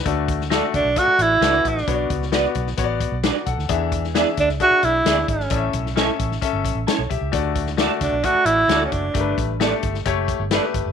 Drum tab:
HH |x-x-x-x-x-x-x-x-|x-x-x-x-x-x-x-x-|x-x-x-x-x-x-x-x-|x-x-x-x-x-x-x-x-|
SD |---oo-------o--o|---oo--o----o--o|---oo--o----o--o|---oo--o----o---|
BD |o-o---o-o-----o-|o-o---o-o-o---o-|o-o---o-o-----o-|o-o---o-o-o---o-|

HH |x-x-x-x-x-x-x-x-|x-x-x-x-x-x-x-x-|
SD |---oo-------o---|----o--o----o---|
BD |o-o---o-o-----o-|o-o---o-o-o---o-|